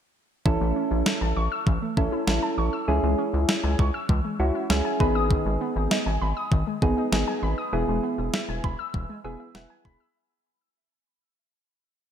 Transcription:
0.46 0.57 A1 loud
0.46 0.58 E3 medium
0.46 1.40 C#4 medium
0.46 1.40 E4 medium
0.46 1.40 A4 medium
0.46 kick loud
0.61 0.72 A1 loud
0.61 0.73 A3 medium
0.76 0.88 C#4 medium
0.91 1.03 A1 medium
0.91 1.03 E4 medium
1.06 1.19 E5 medium
1.06 snare loud
1.21 1.33 A1 medium
1.21 1.34 A5 medium
1.37 1.48 A1 medium
1.37 1.49 C#6 medium
1.52 1.64 E6 medium
1.67 1.78 A1 loud
1.67 1.79 E3 medium
1.67 kick loud
1.82 1.94 A3 medium
1.97 2.09 A1 medium
1.97 2.10 C#4 medium
1.97 2.21 C#4 medium
1.97 2.21 E4 medium
1.97 2.21 A4 medium
1.97 kick medium
2.12 2.25 E4 medium
2.27 2.39 A1 loud
2.27 2.75 C#4 medium
2.27 2.75 E4 medium
2.27 2.75 A4 medium
2.27 2.40 E5 medium
2.27 snare loud
2.43 2.55 A5 medium
2.58 2.69 A1 loud
2.58 2.70 C#6 medium
2.73 2.85 E6 medium
2.88 3.00 C#2 loud
2.88 3.00 E3 medium
2.88 3.82 C#4 medium
2.88 3.82 E4 medium
2.88 3.82 G#4 medium
3.03 3.15 C#2 loud
3.03 3.16 G#3 medium
3.18 3.31 C#4 medium
3.33 3.45 C#2 medium
3.33 3.46 E4 medium
3.49 3.61 E5 medium
3.49 snare loud
3.64 3.76 C#2 medium
3.64 3.76 G#5 medium
3.79 3.91 C#2 loud
3.79 3.91 C#6 medium
3.79 kick loud
3.94 4.07 E6 medium
4.09 4.21 C#2 loud
4.09 4.22 E3 medium
4.09 kick loud
4.25 4.37 G#3 medium
4.40 4.51 C#2 loud
4.40 4.52 C#4 medium
4.40 4.63 C#4 medium
4.40 4.63 E4 medium
4.40 4.63 F#4 medium
4.55 4.67 E4 medium
4.70 4.82 C#2 loud
4.70 5.00 C#4 medium
4.70 5.00 E4 medium
4.70 4.99 G#4 medium
4.70 4.82 E5 medium
4.70 snare loud
4.85 4.97 G#5 medium
5.00 5.35 G#1 loud
5.00 5.97 B3 medium
5.00 5.97 D#4 medium
5.00 5.97 G#4 medium
5.00 5.13 B5 medium
5.00 kick medium
5.15 5.28 D#6 medium
5.31 5.43 D#3 medium
5.31 kick loud
5.46 5.57 G#1 loud
5.46 5.58 G#3 medium
5.61 5.73 B3 medium
5.76 5.88 G#1 medium
5.76 5.88 D#4 medium
5.91 6.04 D#5 medium
5.91 snare loud
6.06 6.18 G#1 loud
6.06 6.19 G#5 medium
6.21 6.33 G#1 medium
6.21 6.34 B5 medium
6.37 6.49 D#6 medium
6.52 6.63 G#1 loud
6.52 6.64 D#3 medium
6.52 kick loud
6.67 6.79 G#3 medium
6.82 6.94 G#1 loud
6.82 7.06 B3 medium
6.82 6.94 B3 medium
6.82 7.06 D#4 medium
6.82 7.06 G#4 medium
6.82 kick medium
6.97 7.10 D#4 medium
7.12 7.24 G#1 loud
7.12 7.59 B3 medium
7.12 7.60 D#4 medium
7.12 7.59 G#4 medium
7.12 7.25 D#5 medium
7.12 snare loud
7.28 7.40 G#5 medium
7.43 7.54 G#1 medium
7.43 7.55 B5 medium
7.58 7.70 D#6 medium
7.73 7.85 E1 loud
7.73 7.85 E3 medium
7.73 8.67 B3 medium
7.73 8.67 E4 medium
7.73 8.67 G#4 medium
7.88 8.00 E1 medium
7.88 8.00 G#3 medium
8.03 8.16 B3 medium
8.18 8.30 E1 medium
8.18 8.31 E4 medium
8.34 8.46 E5 medium
8.34 snare loud
8.49 8.60 E1 medium
8.49 8.61 G#5 medium
8.64 8.76 E1 loud
8.64 8.76 B5 medium
8.64 kick loud
8.79 8.91 E6 medium
8.94 9.06 E1 loud
8.94 9.07 E3 medium
8.94 kick loud
9.09 9.22 G#3 medium
9.24 9.36 E1 loud
9.24 9.37 B3 medium
9.24 9.48 B3 medium
9.24 9.48 E4 medium
9.24 9.48 G#4 medium
9.24 9.53 E5 medium
9.40 9.52 E4 medium
9.55 9.66 E1 loud
9.55 10.02 B3 medium
9.55 10.02 E4 medium
9.55 10.02 G#4 medium
9.55 9.67 E5 medium
9.55 9.69 F#5 medium
9.55 snare medium
9.70 9.82 G#5 medium
9.70 9.84 G#5 medium
9.85 9.97 E1 medium
9.85 9.97 B5 medium
9.85 10.13 B5 medium
9.85 kick medium
10.00 10.13 E6 medium

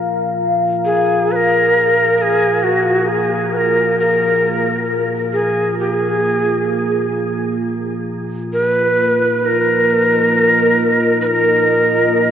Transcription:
0.00 12.31 A#3 medium
0.00 12.31 F4 medium
0.00 8.70 F5 medium
0.00 10.89 A#5 medium
0.85 1.33 G#4 medium
1.32 1.37 B4 medium
1.36 2.18 A#4 loud
2.18 2.65 G#4 medium
2.18 2.23 A#4 medium
2.63 3.10 F#4 medium
3.08 3.55 G#4 medium
3.53 3.98 A#4 medium
3.53 3.58 B4 medium
3.99 5.03 A#4 medium
5.33 5.75 G#4 medium
5.79 5.91 G4 medium
5.91 7.12 G#4 medium
8.41 12.31 D#5 medium
8.53 8.64 A#4 loud
8.64 9.47 B4 loud
9.45 11.20 A#4 loud
10.60 12.31 G#5 medium
11.21 11.29 B4 medium
11.27 12.31 A#4 loud

